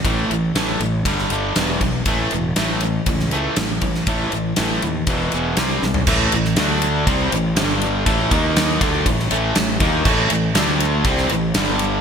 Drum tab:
CC |----------------|----------------|----------------|x---------------|
RD |x-x-x-x-x-x-x-x-|x-x-x-x-x-x-x-x-|x-x-x-x-x-x-x---|--x-x-x-x-x-x-x-|
SD |----o----o--o---|----o----o--o--o|----o-------o-o-|---oo-------o---|
FT |----------------|----------------|---------------o|----------------|
BD |o-------o-----o-|o-------o-----o-|o-------o-------|o-------o-------|

CC |----------------|x---------------|
RD |x-x-x-x-x-x-x-x-|--x-x-x-x-x-x-x-|
SD |----o----o--o---|----o----o--o---|
FT |----------------|----------------|
BD |o-o---o-o-----o-|o-------o-------|